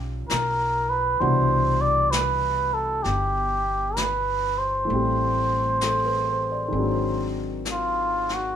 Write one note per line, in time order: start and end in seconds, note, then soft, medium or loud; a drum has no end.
0.00 0.25 B1 medium
0.00 1.21 F3 soft
0.00 1.19 G3 soft
0.00 1.22 B3 soft
0.00 1.21 C#4 soft
0.00 1.22 D#4 soft
0.00 1.22 F4 soft
0.00 0.12 G4 medium
0.00 1.22 G4 soft
0.28 1.17 B1 medium
0.28 0.91 A#4 medium
0.28 brush sweep soft
0.28 snare soft
0.28 hi-hat pedal soft
0.90 1.22 B4 medium
1.20 3.01 C2 medium
1.20 4.88 B2 soft
1.20 4.83 E3 soft
1.20 4.88 G3 soft
1.20 4.89 D4 soft
1.20 1.83 C5 medium
1.20 4.89 F#5 medium
1.20 brush sweep soft
1.81 2.13 D5 medium
2.11 2.75 B4 medium
2.11 brush sweep soft
2.11 snare soft
2.11 hi-hat pedal soft
2.74 3.05 A4 medium
3.03 4.85 G1 medium
3.03 3.98 G4 medium
3.03 brush sweep soft
3.03 snare soft
3.97 4.60 B4 medium
3.97 brush sweep soft
3.97 snare soft
3.97 hi-hat pedal soft
4.58 7.35 C5 medium
4.85 6.71 E3 soft
4.85 6.72 A3 soft
4.89 6.70 A1 medium
4.89 6.74 G3 soft
4.89 brush sweep soft
4.93 6.73 C4 soft
4.93 6.77 G4 soft
5.81 6.25 A4 soft
5.81 brush sweep soft
5.81 snare soft
5.81 hi-hat pedal soft
6.06 6.44 B4 soft
6.27 6.56 C5 soft
6.52 6.83 D5 soft
6.68 8.56 D#3 soft
6.68 8.56 G#3 soft
6.73 8.54 G#1 medium
6.73 8.56 C4 soft
6.73 8.56 D4 soft
6.73 brush sweep soft
6.79 8.56 F#3 soft
7.65 brush sweep soft
7.65 snare soft
7.65 hi-hat pedal soft
7.72 8.36 F4 medium
8.29 snare soft
8.34 8.56 F#4 medium